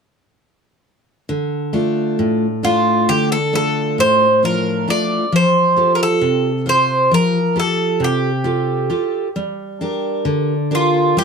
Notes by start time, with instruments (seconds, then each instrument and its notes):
1.29 steel-string acoustic guitar D3
1.73 steel-string acoustic guitar A3 D4 F4
2.19 steel-string acoustic guitar A2
2.63 steel-string acoustic guitar A3 D4 F4, bouzouki F4
3.09 steel-string acoustic guitar D3, bouzouki G4
3.32 bouzouki A4
3.53 steel-string acoustic guitar A3 D4 F4, bouzouki A4
3.98 steel-string acoustic guitar A2, bouzouki C5
4.43 steel-string acoustic guitar F3 D4 F4, bouzouki A#4
4.88 steel-string acoustic guitar A3 D4 F4, bouzouki D5
5.32 steel-string acoustic guitar F3, bouzouki C5
5.77 steel-string acoustic guitar F4 G4 A4
5.95 bouzouki A#4
6.03 bouzouki A4
6.21 steel-string acoustic guitar C3
6.66 steel-string acoustic guitar F4 G4 C5, bouzouki C5
7.11 steel-string acoustic guitar F3, bouzouki A#4
7.56 steel-string acoustic guitar F4 G4 A4, bouzouki A4
8.00 steel-string acoustic guitar C3
8.04 bouzouki G4
8.44 steel-string acoustic guitar F4 G4 A4
8.90 steel-string acoustic guitar F4 G4 A4
9.36 steel-string acoustic guitar G3
9.81 steel-string acoustic guitar D4 G4 A#4
10.25 steel-string acoustic guitar D3
10.71 steel-string acoustic guitar D4 G4 A#4, bouzouki F4
11.17 steel-string acoustic guitar G3, bouzouki G4